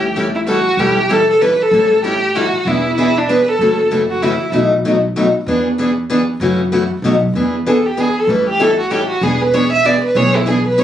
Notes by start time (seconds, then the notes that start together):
Already playing: A1 G4
0.16 E3 G3 C#4 E4 A4
0.35 E4
0.47 E3 G3 C#4 E4 F#4 A4
0.77 E1 E3 G3 C#4 E4 G4 A4
1.09 E3 G3 C#4 E4 A4
1.30 A4
1.41 E3 G3 C#4 E4 A4 B4
1.62 A4
1.71 A1 E3 G3 C#4 E4 A4
2.04 E3 G3 C#4 E4 G4 A4
2.35 E3 G3 C#4 E4 F#4 A4
2.65 E1 E3 B3 D4 E4 G#4
2.97 E3 B3 D4 E4 G#4
3.17 D4
3.29 E3 B3 D4 G#4 B4
3.48 A4
3.59 F#1 C#3 E3 A3 C#4 F#4
3.91 C#3 E3 A3 C#4 F#4
4.10 F#4
4.22 C#3 E3 A3 C#4 E4 F#4
4.52 B1 B2 F#3 A3 D#4 F#4
4.85 B2 F#3 A3 D#4 F#4
5.16 B2 F#3 A3 D#4 F#4
5.46 E2 E3 B3 D4 G#4
5.78 E3 B3 D4 G#4
6.10 E3 B3 D4 G#4
6.40 F#2 C#3 E3 A3 C#4 F#4
6.72 C#3 E3 A3 C#4 F#4
7.02 B1 B2 F#3 A3 D#4 F#4
7.33 E2 E3 B3 D4 G#4
7.66 E3 B3 D4 G#4 A4
7.86 G4
7.97 E3 B3 D4 G#4
8.18 A4
8.27 A1 E3 G3 C#4 E4 A4 B4
8.49 G4
8.59 E3 G3 C#4 E4 A4
8.79 F#4
8.90 E3 G3 C#4 E4 G4 A4
9.09 F#4
9.21 E1 E3 B3 D4 G#4
9.42 B4
9.54 E3 B3 D4 G#4 C#5
9.72 E5
9.85 E3 B3 D4 G#4 D5
10.04 B4
10.15 B1 E3 B3 D4 G#4 C#5
10.36 E4
10.46 E3 B3 D4 G#4
10.67 B4
10.78 E3 B3 D4 G#4 C#5